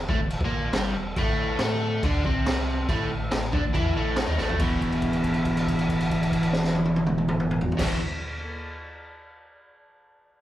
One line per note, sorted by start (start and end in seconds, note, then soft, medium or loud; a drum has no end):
0.09 0.18 A1 loud
0.09 0.19 A2 medium
0.09 0.19 A3 loud
0.09 kick loud
0.19 0.39 E1 medium
0.19 0.37 E2 medium
0.30 crash medium
0.40 0.71 A#1 loud
0.40 kick loud
0.45 0.74 A#2 medium
0.45 0.75 A#3 loud
0.72 0.93 G1 loud
0.72 0.94 G2 medium
0.72 0.95 G3 loud
0.72 snare loud
0.72 crash medium
0.94 1.14 E1 medium
0.94 1.13 E2 medium
1.16 1.56 A1 loud
1.16 1.59 A2 medium
1.16 1.59 A3 loud
1.16 kick loud
1.16 crash medium
1.59 1.99 A2 loud
1.59 2.02 A3 medium
1.59 2.03 A4 loud
1.59 snare loud
1.59 crash medium
2.03 2.23 D2 loud
2.03 2.24 D3 loud
2.03 2.25 D4 loud
2.03 kick loud
2.03 crash medium
2.25 2.85 C2 loud
2.25 2.88 C3 loud
2.25 2.89 C4 loud
2.25 kick loud
2.46 snare loud
2.46 crash medium
2.88 3.08 A1 loud
2.88 3.10 A2 loud
2.88 3.10 A3 loud
2.88 kick loud
2.88 crash medium
3.10 3.30 A1 medium
3.10 3.28 A2 medium
3.31 3.52 A1 medium
3.31 3.49 A2 medium
3.31 snare loud
3.31 crash medium
3.53 3.61 D2 loud
3.53 3.63 D3 loud
3.53 3.64 D4 loud
3.53 kick loud
3.62 3.73 A1 medium
3.62 3.74 A2 medium
3.74 3.93 E2 loud
3.74 3.95 E3 medium
3.74 3.96 E4 loud
3.74 kick loud
3.74 crash medium
3.94 4.25 A1 loud
3.94 4.26 A2 medium
3.94 4.28 A3 loud
4.16 snare loud
4.16 crash medium
4.26 4.38 D#2 loud
4.26 4.37 D#3 medium
4.26 4.38 D#4 loud
4.38 4.59 A1 medium
4.38 4.59 A2 medium
4.38 4.60 A3 medium
4.38 snare medium
4.49 floor tom medium
4.58 7.69 E1 medium
4.58 7.77 E2 loud
4.58 7.80 B2 loud
4.58 7.81 E3 loud
4.58 kick loud
4.58 crash medium
4.81 kick medium
4.81 crash soft
4.92 crash soft
5.02 kick medium
5.02 crash soft
5.13 crash soft
5.24 kick medium
5.24 crash soft
5.34 crash soft
5.45 kick medium
5.45 crash soft
5.57 crash soft
5.67 kick medium
5.67 crash medium
5.79 crash medium
5.89 kick medium
5.89 crash medium
6.00 crash medium
6.10 kick medium
6.10 crash medium
6.23 crash medium
6.32 kick medium
6.32 crash medium
6.43 crash medium
6.53 snare medium
6.64 snare medium
6.75 high tom loud
6.85 high tom medium
6.96 high tom loud
7.07 mid tom loud
7.18 mid tom medium
7.28 mid tom loud
7.40 mid tom loud
7.51 mid tom loud
7.61 floor tom loud
7.72 floor tom loud
7.77 7.97 E1 loud
7.77 7.97 E2 loud
7.77 7.99 B2 loud
7.77 kick loud
7.77 snare loud
7.77 crash loud
7.81 8.00 E3 loud